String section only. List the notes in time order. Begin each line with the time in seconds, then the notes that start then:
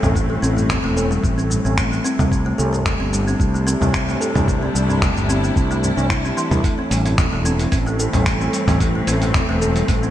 Already playing: A2 E3 A3 C4
2.31 C3
2.71 G3
3.08 D4
3.73 E4
6.63 A2
6.95 A3
7.02 E3
7.51 C4